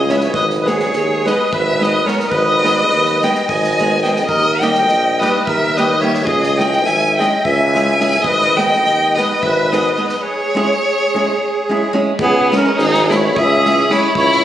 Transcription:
Already playing: tuba C#2, violin D#5
0.08 nylon-string guitar G#3 C#4 E4 G#4, accordion C#5, violin E5, snare
0.16 accordion B4, violin D#5
0.21 accordion C#5, violin E5, snare
0.33 tuba G#1, accordion B4, violin D#5, kick
0.50 snare
0.60 accordion B4, violin D#5
0.66 nylon-string guitar G#3 B3 D#4 G#4, accordion G#4, violin C#5, snare
0.80 snare
0.93 tuba D#2, snare
1.25 nylon-string guitar G#3 B3 D#4 G#4, accordion B4, violin D#5, snare
1.51 tuba G#1, accordion B4, violin E5, kick
1.80 nylon-string guitar G#3 B3 D#4 G#4, accordion B4, violin D#5, snare
2.04 nylon-string guitar G#3 B3 D#4 G#4, accordion A#4, violin C#5, snare
2.20 snare
2.28 tuba G#1, accordion B4, violin D#5, kick
2.63 nylon-string guitar G#3 B3 D#4 G#4, snare
2.90 tuba D#2, snare
3.06 snare
3.21 nylon-string guitar G#3 B3 D#4, accordion D#5, violin G5, snare
3.25 nylon-string guitar G#4
3.35 snare
3.47 tuba G#1, accordion D#5, violin G#5, kick
3.64 snare
3.78 nylon-string guitar G#3 B3 D#4 G#4, snare
4.02 nylon-string guitar G#3 B3 D#4, accordion D#5, violin G5, snare
4.06 nylon-string guitar G#4
4.16 snare
4.26 tuba D#2, accordion A#4, violin D#5, kick
4.60 nylon-string guitar G3 A#3 D#4 G4, accordion D#5, violin G5, snare
4.74 snare
4.88 tuba A#1, snare
5.19 nylon-string guitar G3 A#3 D#4 G4, accordion B4, violin D#5, snare
5.46 tuba D#2, accordion A#4, violin E5, kick
5.74 nylon-string guitar G3 A#3 D#4, accordion B4, violin D#5, snare
5.79 nylon-string guitar G4
5.99 nylon-string guitar G3 A#3 D#4, accordion C#5, violin E5
6.04 nylon-string guitar G4
6.14 snare
6.23 accordion G#4, violin D#5
6.27 tuba C#2, kick
6.43 snare
6.58 nylon-string guitar G#3 C#4 E4 G#4, accordion D#5, violin G5, snare
6.73 snare
6.85 tuba G#1, accordion E5, violin G#5, snare
7.17 nylon-string guitar G#3 C#4 E4 G#4, accordion D#5, violin G5, snare
7.44 tuba C#2, accordion E5, violin G#5, kick
7.74 nylon-string guitar G#3 C#4 E4 G#4, snare
7.99 nylon-string guitar G#3 C#4 E4 G#4, snare
8.12 snare
8.22 tuba G#1, accordion B4, violin D#5, kick
8.42 snare
8.57 nylon-string guitar G#3 B3 D#4 G#4, accordion D#5, violin G5, snare
8.72 snare
8.84 tuba D#2, snare
9.15 nylon-string guitar G#3 B3 D#4 G#4, accordion B4, violin D#5, snare
9.42 tuba G#1, accordion B4, violin E5, kick
9.72 nylon-string guitar G#3 B3 D#4 G#4, accordion B4, violin D#5, snare
9.95 nylon-string guitar G#3 B3 D#4, accordion B4, violin D#5
9.99 nylon-string guitar G#4
10.09 snare
10.15 accordion B4, violin D#5
10.21 accordion G#4, violin C#5
10.55 nylon-string guitar G#3 C#4 E4 G#4
11.14 nylon-string guitar G#3 C#4 E4 G#4
11.69 nylon-string guitar G#3 C#4 E4 G#4
11.93 nylon-string guitar G#3 C#4 E4 G#4
12.19 tuba C#2, violin B3, accordion G#4, kick
12.52 nylon-string guitar G#3 C#4 E4 G#4, violin C#4, accordion A#4, snare
12.77 tuba G#1, violin D#4, accordion G#4, snare
12.94 snare
13.10 nylon-string guitar G#3 C#4 E4 G#4, violin E4, snare
13.14 accordion C#5
13.36 tuba C#2, violin G#4, accordion E5, kick
13.66 nylon-string guitar G#3 C#4 E4 G#4, snare
13.90 nylon-string guitar G#3 C#4 E4 G#4, violin E4, accordion C#5, snare
14.15 tuba C#2, violin E4, accordion C#5, kick
14.33 snare

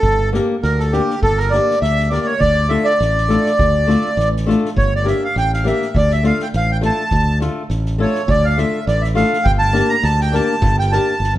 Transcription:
Already playing: accordion A4
0.03 fingered electric bass G1, kick
0.33 nylon-string guitar A#3 D4 G4 A#4, snare
0.63 fingered electric bass D2, accordion A#4, snare
0.79 accordion A4, snare
0.92 nylon-string guitar A#3 D4 G4 A#4, accordion G4, snare
1.10 snare
1.23 fingered electric bass G1, accordion A4, kick
1.38 accordion A#4, snare
1.51 nylon-string guitar A#3 D4 G4 A#4, accordion D5, snare
1.71 snare
1.82 fingered electric bass D2, accordion E5, snare
1.99 snare
2.10 nylon-string guitar A#3 D4 G4 A#4, accordion D5
2.14 snare
2.26 accordion C#5
2.40 fingered electric bass D2, accordion D5, kick
2.69 nylon-string guitar A3 D4 F4 A4, accordion E5
2.84 accordion D5
3.00 fingered electric bass A1, snare
3.18 snare
3.28 nylon-string guitar A3 D4 F4 A4, snare
3.46 snare
3.59 fingered electric bass D2, kick
3.87 nylon-string guitar A3 D4 F4 A4, snare
4.17 fingered electric bass A1, snare
4.36 snare
4.46 nylon-string guitar A3 D4 F4 A4, snare
4.65 snare
4.76 fingered electric bass G1, accordion C#5, kick
4.96 accordion D5
5.04 nylon-string guitar A#3 D4 G4 A#4, snare
5.09 accordion E5
5.24 accordion F5
5.36 fingered electric bass A1, accordion G5, snare
5.53 accordion F5, snare
5.64 nylon-string guitar A#3 D4 G4 A#4, accordion E5, snare
5.82 snare
5.95 fingered electric bass D2, accordion D5, kick
6.10 accordion E5, snare
6.23 nylon-string guitar A3 D4 F4 A4, accordion F5, snare
6.40 accordion G5, snare
6.53 fingered electric bass A1, accordion F5, snare
6.72 accordion G5
6.81 nylon-string guitar A3 D4 F4 A4, snare
6.86 accordion A5
7.11 fingered electric bass D2, kick
7.40 nylon-string guitar A3 D4 F4 A4, snare
7.69 fingered electric bass A1, snare
7.85 snare
7.98 nylon-string guitar A3 D4 F4 A4, accordion C#5
8.15 snare
8.28 fingered electric bass D2, accordion D5, kick
8.45 accordion F5
8.57 nylon-string guitar A3 D4 F4 A4, accordion E5, snare
8.87 fingered electric bass A1, accordion D5, snare
9.02 accordion E5, snare
9.15 nylon-string guitar A3 D4 F4 A4, accordion F5, snare
9.33 snare
9.44 fingered electric bass G1, accordion G5, kick
9.59 accordion A5
9.73 nylon-string guitar A#3 D4 G4 A#4, snare
9.89 accordion A#5
10.03 fingered electric bass D2, accordion A5, snare
10.20 accordion G5, snare
10.32 nylon-string guitar A#3 D4 G4 A#4, accordion A5, snare
10.62 fingered electric bass G1, kick
10.79 accordion G5, snare
10.92 nylon-string guitar A#3 D4 G4 A#4, accordion A5, snare
11.20 fingered electric bass G1, snare
11.35 fingered electric bass A1

